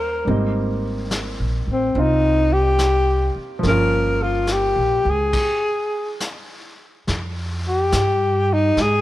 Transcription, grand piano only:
Already playing: G3 A#3 C#4 F4
0.25 G3 A#3 C4
0.30 D#4
1.96 C4 D#4 F4
3.59 F3 A#3
3.67 C#4 F4

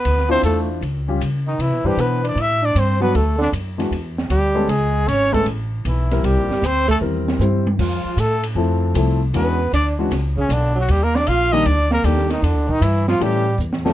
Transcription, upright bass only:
0.05 D2
0.43 E2
0.81 C#2
1.20 C#3
1.58 C3
1.72 B2
1.84 G2
1.97 B2
2.35 A2
2.75 G2
3.15 D2
3.52 F#2
3.91 E2
4.30 D2
4.67 C#2
5.07 G#1
5.46 A1
5.85 B1
6.24 C2
6.37 A#1
6.49 G1
6.62 D2
7.01 E2
7.39 G2
7.79 F2
8.05 muted upright bass stroke
8.16 A2
8.55 F2
8.94 C2
9.33 E2
9.72 D2
10.11 C#2
10.49 B1
10.89 D#2
11.27 A#1
11.66 D2
12.04 D#2
12.42 E2
12.55 D2
12.67 A#1
12.81 G2
13.20 A2
13.58 E2

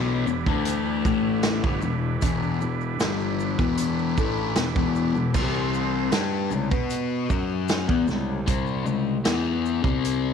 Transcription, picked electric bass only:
Already playing: B1
0.26 E1
0.46 D2
1.05 A1
1.64 G1
1.83 E1
2.22 E1
2.63 E1
3.00 G1
3.59 E1
4.18 A1
4.57 E1
4.76 E1
5.14 E1
5.35 C2
6.12 G2
6.50 C2
6.71 B2
7.30 F#2
7.89 E2
8.09 C2
8.48 C2
8.87 C2
9.26 E2
9.84 C2

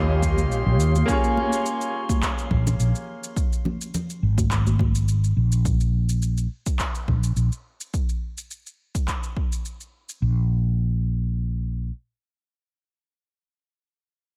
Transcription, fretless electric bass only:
Already playing: D#2
0.51 A#1
0.66 A#1
0.79 D#2
2.51 A#1
2.79 A#1
4.23 G#1
5.37 A#1
7.08 A#1
7.36 A#1
10.22 A#1

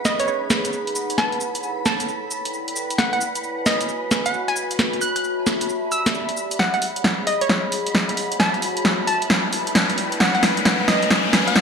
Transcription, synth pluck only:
0.05 D#5
0.20 C#5
0.28 C#5
1.18 A5
1.86 A5
2.98 F#5
3.13 F#5
3.66 D#5
4.26 F#5
4.48 G#5
5.01 F#6
5.16 F#6
5.92 E6
6.59 F#5
6.74 F#5
7.27 D#5
7.41 C#5
7.50 C#5
8.40 A5
9.07 A5
10.20 F#5
10.35 F#5
10.88 D#5
11.47 F#5

